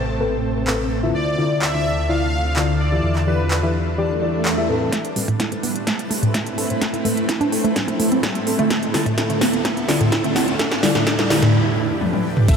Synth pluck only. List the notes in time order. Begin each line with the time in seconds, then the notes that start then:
4.92 A3
5.16 G3
5.28 A2
5.40 E4
5.52 A3
5.63 B3
5.87 A3
6.11 A3
6.23 A2
6.34 E4
6.58 A4
6.81 A3
6.93 E4
7.05 A3
7.29 E4
7.41 D4
7.52 A4
7.64 A3
7.76 G3
7.88 A3
8.00 A3
8.12 C4
8.23 G3
8.47 A4
8.59 A3
8.70 A3
8.94 G3
9.06 A2
9.18 E4
9.30 A3
9.41 B3
9.65 A3
9.88 G3
10.01 A2
10.12 E4
10.24 A3
10.36 B3
10.59 A3
10.83 G3
10.95 A2
11.07 A3
11.30 G3
11.42 A2
12.48 A3